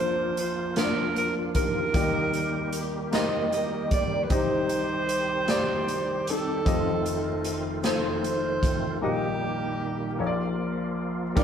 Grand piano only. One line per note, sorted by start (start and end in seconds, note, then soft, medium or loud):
0.00 1.90 A#1 medium
0.00 1.90 A#2 soft
0.00 0.62 A#3 medium
0.00 0.62 D4 medium
0.00 0.62 F4 medium
0.00 0.63 D5 medium
0.76 1.80 A#3 medium
0.76 1.81 D4 medium
0.76 1.81 F4 medium
0.76 0.84 C5 soft
0.84 1.85 D5 medium
1.93 4.26 D#2 soft
1.93 4.26 D#3 soft
1.93 2.98 A#3 medium
1.93 2.99 D#4 medium
1.93 2.99 G4 medium
1.93 2.01 D5 medium
2.02 3.02 D#5 medium
3.11 4.16 A#3 medium
3.11 4.17 D#4 soft
3.11 4.17 G4 soft
3.11 4.17 C5 medium
4.29 6.62 C2 medium
4.29 6.62 C3 soft
4.29 5.34 C4 medium
4.29 5.34 D#4 medium
4.29 5.35 G4 medium
4.29 5.35 D#5 medium
5.47 6.52 C4 medium
5.47 6.52 D#4 medium
5.47 6.52 G4 medium
5.47 6.53 D5 medium
6.65 8.97 F1 medium
6.65 8.97 F2 medium
6.65 7.70 C4 medium
6.65 7.70 F4 medium
6.65 6.73 G4 soft
6.65 7.71 D#5 medium
6.73 7.73 A4 medium
7.83 8.87 C4 medium
7.83 8.88 F4 medium
7.83 8.88 A4 medium
7.83 8.89 C5 medium
9.01 10.15 A#1 soft
9.01 10.15 A#2 medium
9.01 10.05 A#3 medium
9.01 10.06 D#4 medium
9.01 10.06 G4 medium
9.01 10.06 D#5 medium
10.18 11.33 A#1 medium
10.18 11.32 A#2 medium
10.18 11.22 A#3 medium
10.18 11.23 F4 medium
10.18 10.26 C#5 medium
10.27 11.27 D5 medium
11.36 11.44 D#2 medium
11.36 11.44 D#3 medium
11.36 11.44 G3 medium
11.36 11.44 D4 medium
11.36 11.44 F4 medium
11.36 11.44 D5 medium